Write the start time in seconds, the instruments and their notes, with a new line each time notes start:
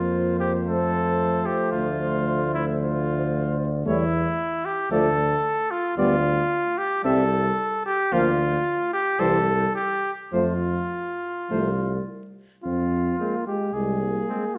Already playing: tuba F2, euphonium F3, french horn A#3, trumpet F4, cornet C5
0.40 trumpet G4
0.67 french horn A3, trumpet A4
1.46 trumpet G4
1.72 tuba D2, trumpet F4
2.54 trumpet E4
2.81 trumpet F4
3.86 tuba E2, euphonium G3, french horn A3, trumpet E4, cornet C#5
4.65 trumpet G4
4.91 tuba D2, euphonium F3, french horn A3, trumpet A4, cornet D5
5.71 trumpet F4
5.97 tuba D2, euphonium G3, french horn B3, trumpet F4, cornet D5
6.78 trumpet G4
7.04 tuba C2, euphonium G3, french horn C4, trumpet A4, cornet E5
7.86 trumpet G4
8.12 tuba D2, euphonium F3, french horn A#3, trumpet F4, cornet F5
8.93 trumpet G4
9.19 tuba C2, euphonium E3, french horn G3, trumpet A4, cornet C5
9.75 trumpet G4
10.33 tuba F2, euphonium F3, french horn A3, trumpet F4, cornet C5
11.50 tuba C2, euphonium F3, french horn A3, cornet C5
12.64 tuba F2, french horn C4, cornet F4
13.19 euphonium G#3, french horn A#3, trumpet C4
13.47 french horn G#3, cornet G4
13.74 tuba C2, french horn G#3, cornet G#4
14.02 french horn A#3
14.29 euphonium G#3, trumpet C4